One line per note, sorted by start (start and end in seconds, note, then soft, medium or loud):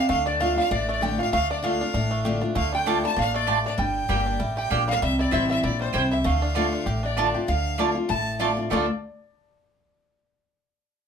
0.00 0.26 D4 medium
0.09 0.57 D2 medium
0.09 0.39 D3 medium
0.09 0.40 A3 medium
0.09 0.25 F5 loud
0.09 0.25 F5 medium
0.26 0.58 D4 medium
0.26 0.39 D5 loud
0.26 0.43 D5 medium
0.40 0.57 D3 medium
0.40 0.88 A3 medium
0.40 0.57 A3 medium
0.40 0.57 D4 medium
0.40 0.55 F4 medium
0.40 0.57 F5 medium
0.40 0.58 F5 medium
0.56 0.71 D4 medium
0.56 0.71 D4 soft
0.56 0.70 F4 medium
0.56 0.72 F5 loud
0.56 0.74 F5 medium
0.71 1.19 A1 medium
0.71 1.30 A2 loud
0.71 1.19 D4 medium
0.71 0.88 D5 loud
0.71 0.89 D5 medium
0.89 1.32 A3 medium
0.89 1.01 D5 medium
0.89 1.03 D5 medium
1.01 1.18 D3 medium
1.01 1.18 A3 medium
1.01 1.19 D4 medium
1.01 1.17 F4 loud
1.01 1.46 G4 medium
1.01 1.18 G5 medium
1.05 1.20 G5 medium
1.18 1.50 D4 medium
1.18 1.33 D4 soft
1.18 1.32 F4 medium
1.18 1.32 F5 medium
1.22 1.33 F5 medium
1.33 1.80 D2 loud
1.33 1.61 D3 loud
1.33 1.64 A3 medium
1.33 1.50 F5 loud
1.33 1.49 F5 medium
1.51 1.81 D4 medium
1.51 1.64 D5 medium
1.51 1.63 D5 medium
1.62 1.79 D3 medium
1.62 1.80 A3 medium
1.62 2.08 A3 medium
1.62 1.80 D4 medium
1.62 1.80 F4 medium
1.62 2.38 F5 loud
1.62 2.39 F5 medium
1.81 1.94 D4 medium
1.81 1.95 D4 soft
1.81 1.94 F4 medium
1.94 2.42 A1 medium
1.94 2.53 A2 medium
1.94 2.41 D4 medium
2.11 2.53 A3 medium
2.25 2.41 D3 medium
2.25 2.41 A3 medium
2.25 2.42 D4 loud
2.25 2.40 F4 loud
2.25 2.69 G4 medium
2.41 2.72 D4 medium
2.41 2.56 D4 medium
2.41 2.55 F4 medium
2.55 3.03 D2 medium
2.55 2.85 D3 medium
2.55 2.85 A3 medium
2.55 2.74 F5 loud
2.55 2.76 F5 medium
2.73 3.03 D4 medium
2.73 3.05 G5 loud
2.86 3.03 D3 medium
2.86 3.31 A3 medium
2.86 2.96 A3 medium
2.86 3.03 A3 medium
2.86 3.03 D4 medium
2.86 2.96 F4 medium
2.86 3.02 F4 medium
2.86 2.97 D5 medium
2.86 2.97 A5 medium
3.03 3.15 D4 medium
3.03 3.17 D4 soft
3.03 3.16 F4 medium
3.03 3.18 A5 loud
3.03 3.17 A5 medium
3.16 3.65 A1 medium
3.16 3.46 A#2 medium
3.16 3.61 D4 medium
3.16 3.34 F5 loud
3.16 3.35 F5 medium
3.34 3.76 A3 medium
3.34 3.64 D5 loud
3.34 3.64 D5 medium
3.47 3.77 A2 medium
3.47 3.57 A3 medium
3.47 3.58 F4 loud
3.47 3.79 G4 medium
3.47 3.58 D5 loud
3.47 3.58 A5 loud
3.66 3.79 D4 medium
3.66 3.78 D5 medium
3.78 4.02 G1 medium
3.78 4.37 G2 medium
3.78 4.09 G3 medium
3.78 4.53 G5 medium
3.78 4.53 G5 loud
4.09 4.35 G1 medium
4.09 4.38 G3 medium
4.09 4.19 A#3 medium
4.09 4.39 A#3 medium
4.09 4.39 D4 medium
4.09 4.19 G4 medium
4.09 4.39 G4 medium
4.09 4.19 D5 medium
4.09 4.20 G5 medium
4.26 4.68 D4 medium
4.40 4.66 A1 medium
4.40 4.69 A2 medium
4.40 4.84 G3 medium
4.57 4.99 G4 medium
4.57 4.86 G5 loud
4.70 4.97 A#1 medium
4.70 5.00 A#2 medium
4.70 4.81 A#3 medium
4.70 5.02 D4 medium
4.70 4.81 G4 medium
4.70 4.81 D5 loud
4.70 4.81 G5 loud
4.88 5.01 G3 medium
4.88 5.01 F5 loud
4.88 5.02 F5 medium
5.02 5.26 C2 medium
5.02 5.61 C3 medium
5.02 5.31 G3 medium
5.02 5.20 E5 loud
5.02 5.19 E5 medium
5.19 5.61 E4 medium
5.19 5.32 D5 medium
5.19 5.32 D5 loud
5.31 5.59 A1 medium
5.31 5.61 E3 medium
5.31 5.77 G3 medium
5.31 5.62 G3 medium
5.31 5.42 C4 medium
5.31 5.62 C4 medium
5.31 5.42 E4 medium
5.31 5.63 E4 medium
5.31 5.42 C5 medium
5.31 5.49 E5 medium
5.31 5.49 E5 loud
5.31 5.42 G5 loud
5.50 5.91 C4 medium
5.50 5.64 E5 loud
5.50 5.63 E5 medium
5.63 5.90 A#1 medium
5.63 5.93 A#2 medium
5.63 6.08 E4 medium
5.63 5.81 D5 loud
5.63 5.80 D5 medium
5.81 6.22 G3 medium
5.81 5.93 C5 medium
5.81 5.94 C5 medium
5.93 6.20 C2 medium
5.93 6.24 C3 medium
5.93 6.03 C4 medium
5.93 6.04 E4 medium
5.93 6.25 G4 medium
5.93 6.04 C5 loud
5.93 6.11 C5 medium
5.93 6.04 G5 loud
6.11 6.25 E4 medium
6.11 6.28 E5 medium
6.11 6.18 E5 medium
6.24 6.73 D2 medium
6.24 6.54 D3 loud
6.24 6.69 A3 medium
6.24 7.18 F5 medium
6.24 7.04 F5 medium
6.42 6.72 D4 medium
6.55 6.85 D3 medium
6.55 7.00 D3 medium
6.55 6.65 A3 medium
6.55 6.85 A3 medium
6.55 6.85 D4 medium
6.55 6.65 F4 medium
6.55 6.86 F4 medium
6.55 6.66 D5 medium
6.55 6.66 A5 medium
6.73 7.02 D4 medium
6.86 7.34 A1 medium
6.86 7.45 A2 medium
6.86 7.31 G4 medium
7.03 7.15 D4 medium
7.03 7.50 D5 medium
7.03 7.46 D5 medium
7.17 7.34 D3 medium
7.17 7.27 A3 medium
7.17 7.34 A3 medium
7.17 7.48 D4 medium
7.17 7.34 D4 medium
7.17 7.27 F4 medium
7.17 7.33 F4 medium
7.17 7.27 D5 loud
7.17 7.28 A5 loud
7.34 7.48 D4 soft
7.34 7.47 F4 medium
7.34 7.48 G4 medium
7.48 7.96 D2 medium
7.48 7.77 D3 loud
7.48 7.93 F5 medium
7.78 7.95 D3 medium
7.78 7.88 A3 medium
7.78 7.95 A3 medium
7.78 7.87 A3 medium
7.78 7.95 D4 medium
7.78 7.82 D4 medium
7.78 7.88 F4 medium
7.78 7.94 F4 medium
7.78 7.89 D5 medium
7.78 7.89 A5 medium
7.95 8.10 D4 soft
7.95 8.09 F4 medium
8.09 8.57 A1 medium
8.09 8.68 A2 loud
8.09 8.38 A5 medium
8.09 8.41 A5 loud
8.39 8.56 D3 medium
8.39 8.50 A3 medium
8.39 8.56 A3 loud
8.39 8.48 A3 medium
8.39 8.57 D4 medium
8.39 8.44 D4 medium
8.39 8.50 F4 loud
8.39 8.56 F4 medium
8.39 8.62 D5 medium
8.39 8.63 D5 medium
8.39 8.50 D5 loud
8.39 8.51 A5 loud
8.57 8.71 D4 soft
8.57 8.70 F4 medium
8.70 8.87 D2 medium
8.70 8.85 D3 medium
8.70 8.84 A3 medium
8.70 8.87 A3 medium
8.70 8.85 A3 medium
8.70 8.85 D4 loud
8.70 8.77 D4 medium
8.70 8.85 F4 medium
8.70 8.86 F4 loud
8.70 8.87 D5 medium
8.70 8.85 D5 medium
8.70 8.85 A5 medium
8.75 8.89 F4 medium
8.75 8.90 A4 medium